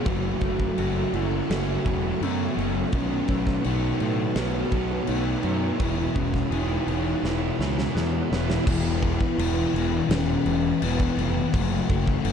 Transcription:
Already playing: clean electric guitar A3 C#4, string machine C#6
0.02 fingered electric bass F#1, overdriven electric guitar F#2 C#3 F#3 A3 C#4 F#4, string machine A4 E5 F#5, kick, crash
0.06 distorted electric guitar F#2 C#3 F#3, clean electric guitar E3, soft synth lead F#4
0.41 fingered electric bass F#1, distorted electric guitar F#3, clean electric guitar A3, kick, crash
0.45 distorted electric guitar C#3
0.60 kick
0.75 fingered electric bass F#1, overdriven electric guitar F#3 A3 C#4 F#4, clean electric guitar F#4, crash
0.79 distorted electric guitar F#2 C#3 F#3
1.13 fingered electric bass F#1, distorted electric guitar C#3 F#3, clean electric guitar A3, soft synth lead E4, crash
1.48 fingered electric bass F#1, overdriven electric guitar F#2 C#3 F#3 A3 C#4 F#4, distorted electric guitar F#2, clean electric guitar C#4, soft synth lead F#4, snare, crash
1.52 distorted electric guitar C#3 F#3
1.83 fingered electric bass E1, distorted electric guitar C#3 F#3, clean electric guitar E3, overdriven electric guitar F#3 A3 C#4 F#4, kick, crash
2.20 fingered electric bass F#2, distorted electric guitar F#2 C#3 F#3, clean electric guitar A3, soft synth lead B3, crash
2.54 fingered electric bass F#1, distorted electric guitar F#3, overdriven electric guitar F#3 A3 C#4 F#4, clean electric guitar C#4, crash
2.59 distorted electric guitar C#3
2.92 fingered electric bass B1, overdriven electric guitar B2 D#3 A3 B3 F#4, distorted electric guitar B2 F#3 B3, clean electric guitar D#3, soft synth lead C#4, string machine B4 C#5 A5, kick, crash
3.28 fingered electric bass B1, distorted electric guitar F#3 B3, clean electric guitar A3, kick, crash
3.47 kick, snare
3.63 fingered electric bass B1, distorted electric guitar B2 F#3 B3, overdriven electric guitar D#3 A3, soft synth lead D#4, clean electric guitar F#4, crash
3.67 overdriven electric guitar B3 F#4
3.99 fingered electric bass A2, distorted electric guitar F#3 B3, clean electric guitar A3, crash
4.35 fingered electric bass B1, distorted electric guitar B2 F#3 B3, overdriven electric guitar B2 D#3 A3 B3, clean electric guitar C#4, soft synth lead F#4, snare, crash
4.39 overdriven electric guitar F#4
4.71 fingered electric bass B1, clean electric guitar D#3, distorted electric guitar F#3 B3, overdriven electric guitar B3 F#4, kick, crash
4.76 overdriven electric guitar A3
5.07 fingered electric bass B1, distorted electric guitar B2 F#3 B3, clean electric guitar A3, soft synth lead D#4, crash
5.43 fingered electric bass F#2, distorted electric guitar F#3 B3, clean electric guitar C#4, overdriven electric guitar F#4, crash
5.47 overdriven electric guitar A3 B3
5.79 fingered electric bass E1, distorted electric guitar E2 B2 E3, overdriven electric guitar E2 B2 E3 G#3, clean electric guitar F#3, soft synth lead E4, string machine F#4 G#5 E6, kick, crash
5.83 overdriven electric guitar B3 E4
6.14 fingered electric bass E1, distorted electric guitar E3, clean electric guitar B3, soft synth lead C#4, kick, crash
6.20 distorted electric guitar B2
6.34 kick, snare
6.50 fingered electric bass E1, distorted electric guitar E2, overdriven electric guitar E3 G#3 B3, soft synth lead D#4, clean electric guitar G#4, crash
6.54 distorted electric guitar B2 E3, overdriven electric guitar E4
6.86 fingered electric bass E1, distorted electric guitar E3, clean electric guitar B3, crash
6.91 distorted electric guitar B2
7.22 fingered electric bass E1, overdriven electric guitar E2 B2 E3 G#3 B3 E4, distorted electric guitar E2 B2 E3, snare
7.58 fingered electric bass C#2, distorted electric guitar B2 E3, clean electric guitar F#3, overdriven electric guitar G#3 B3 E4, snare
7.62 overdriven electric guitar E3
7.79 snare
7.95 distorted electric guitar E2 B2 E3, fingered electric bass E2, clean electric guitar B3, snare
8.30 fingered electric bass E1, distorted electric guitar B2 E3, overdriven electric guitar G#3 B3 E4, snare
8.34 overdriven electric guitar E3
8.50 snare
8.66 fingered electric bass E1, distorted electric guitar E2 B2 E3, string machine E3 B4 F#5 B5, soft synth lead E4, kick, crash
9.02 distorted electric guitar B2 E3, kick, crash
9.21 kick
9.37 fingered electric bass E1, distorted electric guitar E2 B2 E3, crash
9.74 fingered electric bass E1, distorted electric guitar B2 E3, crash
10.09 fingered electric bass E1, distorted electric guitar E2 B2, soft synth lead C#4, snare, crash
10.13 distorted electric guitar E3
10.45 fingered electric bass E1, distorted electric guitar E3, crash
10.49 distorted electric guitar B2
10.82 fingered electric bass E1, distorted electric guitar E2 B2 E3, soft synth lead B3, crash
11.00 kick
11.17 fingered electric bass F1, distorted electric guitar E3, crash
11.21 distorted electric guitar B2
11.53 fingered electric bass F#1, distorted electric guitar F#2 C#3, soft synth lead A3, string machine A4 C#6, kick, crash
11.58 distorted electric guitar F#3
11.89 fingered electric bass F#1, distorted electric guitar C#3 F#3, kick, crash
12.07 kick
12.24 fingered electric bass F#1, distorted electric guitar F#2 C#3 F#3, crash

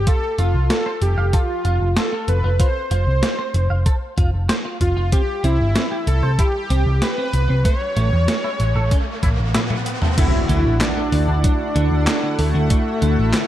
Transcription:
0.07 clean electric guitar F4, supersaw synth A4, kick, closed hi-hat
0.38 picked electric bass F1, clean electric guitar F4, supersaw synth F4, closed hi-hat
0.54 picked electric bass C2
0.70 clean electric guitar F4, supersaw synth A4, snare, closed hi-hat
0.86 clean electric guitar C5
1.02 picked electric bass F1, supersaw synth G4, closed hi-hat
1.17 picked electric bass F1, clean electric guitar F5
1.33 supersaw synth F4, clean electric guitar A4, kick, closed hi-hat
1.65 picked electric bass F1, clean electric guitar F4, closed hi-hat
1.81 picked electric bass F1
1.97 supersaw synth A4, clean electric guitar C5, snare, closed hi-hat
2.13 clean electric guitar F4
2.28 picked electric bass F1, supersaw synth B4, closed hi-hat
2.44 picked electric bass F1, clean electric guitar F4
2.60 clean electric guitar F4, supersaw synth C5, kick, closed hi-hat
2.91 picked electric bass F1, clean electric guitar F4, supersaw synth C5, closed hi-hat
3.07 picked electric bass C2
3.23 clean electric guitar F4, snare, closed hi-hat
3.39 clean electric guitar C5
3.54 picked electric bass F1, closed hi-hat
3.70 picked electric bass F1, clean electric guitar F5
3.86 clean electric guitar A4, kick, closed hi-hat
4.18 picked electric bass F1, clean electric guitar F4, kick, closed hi-hat
4.33 picked electric bass F1
4.49 clean electric guitar C5, snare, closed hi-hat
4.65 clean electric guitar F4
4.81 picked electric bass F1, supersaw synth F4, kick, closed hi-hat
4.96 picked electric bass F1, clean electric guitar F4
5.12 clean electric guitar C4, supersaw synth G4, kick, closed hi-hat, riser
5.44 picked electric bass C2, clean electric guitar C4, supersaw synth E4, closed hi-hat
5.60 picked electric bass G1
5.76 clean electric guitar C4, snare, closed hi-hat
5.91 clean electric guitar G4
6.07 picked electric bass C2, supersaw synth A4, closed hi-hat
6.23 picked electric bass C2, clean electric guitar C5
6.39 clean electric guitar E4, supersaw synth G4, kick, closed hi-hat
6.70 picked electric bass C2, clean electric guitar C4, closed hi-hat
6.86 picked electric bass C2
7.02 clean electric guitar G4, supersaw synth B4, snare, closed hi-hat
7.18 clean electric guitar C4
7.33 picked electric bass C2, closed hi-hat
7.49 picked electric bass C2, clean electric guitar C4
7.65 clean electric guitar A3, supersaw synth C#5, kick, closed hi-hat
7.97 picked electric bass A1, clean electric guitar A3, closed hi-hat
8.12 picked electric bass E2
8.28 clean electric guitar A3, snare, closed hi-hat
8.44 clean electric guitar E4
8.60 picked electric bass A1, closed hi-hat
8.76 picked electric bass A1, clean electric guitar A4
8.91 clean electric guitar C#4, kick, closed hi-hat
9.23 picked electric bass A1, clean electric guitar E4, kick, closed hi-hat
9.39 picked electric bass A1
9.55 clean electric guitar E4, snare, closed hi-hat, high tom
9.70 clean electric guitar A3, high tom
9.86 closed hi-hat
10.02 clean electric guitar A3, mid tom
10.18 clean electric guitar D3, analog polysynth A3 D4 E4 F#4, analog synth pad E4 A4 D5 F#5, supersaw synth E4, kick, closed hi-hat, crash, impact
10.49 picked electric bass D2, clean electric guitar D3, supersaw synth E4, closed hi-hat
10.65 picked electric bass A1
10.81 clean electric guitar D3, supersaw synth D4, snare, clap, closed hi-hat
10.97 clean electric guitar A3
11.12 picked electric bass D2, analog polysynth A3 D4 E4 F#4, open hi-hat
11.28 picked electric bass D2, clean electric guitar D4
11.44 clean electric guitar F#3, supersaw synth D4, kick, closed hi-hat
11.76 picked electric bass D2, clean electric guitar D3, closed hi-hat
11.91 picked electric bass D2
12.07 clean electric guitar A3, snare, clap, closed hi-hat
12.23 clean electric guitar D3
12.39 picked electric bass D2, supersaw synth A3, open hi-hat
12.55 picked electric bass D2, clean electric guitar D3
12.70 clean electric guitar D3, analog polysynth A3 D4 E4 F#4, analog synth pad E5, kick, closed hi-hat
13.02 picked electric bass D2, clean electric guitar D3, closed hi-hat
13.18 picked electric bass A1
13.34 clean electric guitar D3, snare, clap, closed hi-hat

